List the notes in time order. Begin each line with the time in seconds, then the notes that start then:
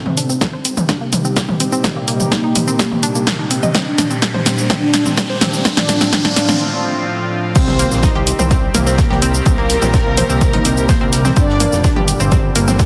Already playing: C3 G3 C4 D#4 G4, riser
0.06 mid tom
0.17 D4, open hi-hat, shaker
0.30 C4, shaker
0.41 kick, snare, mid tom, shaker
0.53 C5
0.65 C4, open hi-hat, shaker
0.77 mid tom, shaker
0.89 D4, kick, snare, shaker
1.01 A#3
1.13 open hi-hat, mid tom, shaker
1.25 C4, shaker
1.36 A#3 G4, kick, snare, shaker
1.49 mid tom
1.60 C4, open hi-hat, shaker
1.72 C4, shaker
1.84 kick, snare, mid tom, shaker
1.96 A#3
2.08 A#3, open hi-hat, shaker
2.20 mid tom, shaker
2.32 D#4, kick, snare, shaker
2.44 D#4
2.55 open hi-hat, mid tom, shaker
2.68 C4, shaker
2.79 G4, kick, snare, shaker
2.91 mid tom
3.03 D4, open hi-hat, shaker
3.15 A#3, shaker
3.27 kick, snare, mid tom, shaker
3.39 D#4
3.51 C4, open hi-hat, shaker
3.63 D#5, mid tom, shaker
3.75 A#2 G3 C4 D4, kick, snare, shaker
3.98 D4, snare, open hi-hat, mid tom, shaker
4.10 C4, shaker
4.22 kick, snare, shaker
4.34 C5, mid tom
4.46 C4, snare, open hi-hat, shaker
4.58 shaker
4.70 C4 D4, kick, snare, mid tom, shaker
4.94 D4, snare, open hi-hat, shaker
5.06 C4, mid tom, shaker
5.17 kick, snare, shaker
5.30 C5
5.41 C4, snare, open hi-hat, mid tom, shaker
5.53 shaker
5.65 A2 F3 C4 D4 F4, kick, snare, shaker
5.77 snare, mid tom
5.89 D4, snare, open hi-hat, shaker
6.01 C4, snare, shaker
6.13 C4 D4, kick, snare, mid tom, shaker
6.25 snare
6.36 D4, snare, open hi-hat, shaker
6.49 C4, snare, mid tom, shaker
7.55 C2 D#3 G3 C4 G4 C5, kick, closed hi-hat, crash, impact, shaker
7.68 snare, mid tom
7.79 A#3 A#4, closed hi-hat, open hi-hat, shaker
7.91 A#1, snare, shaker
8.03 D#4 D#5, kick, snare, closed hi-hat, mid tom, shaker
8.15 C2 G4 G5
8.27 closed hi-hat, open hi-hat, shaker
8.39 C2 C4 C5, closed hi-hat, mid tom, shaker
8.51 C4 C5, kick, closed hi-hat, shaker
8.74 C2 A#3 A#4, closed hi-hat, open hi-hat, mid tom, shaker
8.87 C4 C5, snare, shaker
8.98 A#3 A#4, kick, snare, closed hi-hat, shaker
9.10 C2 G4 G5, snare, mid tom
9.22 C4 C5, closed hi-hat, open hi-hat, shaker
9.34 closed hi-hat, shaker
9.46 C2 C4 C5, kick, closed hi-hat, mid tom, shaker
9.58 A#3 A#4
9.70 closed hi-hat, open hi-hat, shaker
9.82 A#1 C4 C5, snare, mid tom, shaker
9.94 C4 C5, kick, snare, closed hi-hat, shaker
10.06 C2
10.17 C4 C5, closed hi-hat, open hi-hat, mid tom, shaker
10.30 C2 C4 C5, closed hi-hat, shaker
10.41 kick, closed hi-hat, shaker
10.53 D#4 D#5, open hi-hat, mid tom
10.65 C2 C4 C5, closed hi-hat, open hi-hat, shaker
10.77 shaker
10.89 C5 C6, kick, snare, closed hi-hat, mid tom, shaker
11.01 C2 C4 C5
11.12 snare, closed hi-hat, open hi-hat, shaker
11.25 C4 C5, snare, mid tom, shaker
11.36 G1 A#2 D3 C4 D4 C5 D5, kick, closed hi-hat, shaker
11.49 snare
11.60 A#3 A#4, closed hi-hat, open hi-hat, mid tom, shaker
11.72 F1, snare, shaker
11.84 D4 D5, kick, snare, closed hi-hat, shaker
11.96 G1 G4 G5, mid tom
12.08 closed hi-hat, open hi-hat, shaker
12.19 G1 C4 C5, closed hi-hat, shaker
12.31 C4 C5, kick, closed hi-hat, mid tom, shaker
12.55 G1 A#3 A#4, closed hi-hat, open hi-hat, shaker
12.67 C4 C5, snare, mid tom, shaker
12.79 A3 A4, kick, snare, closed hi-hat, shaker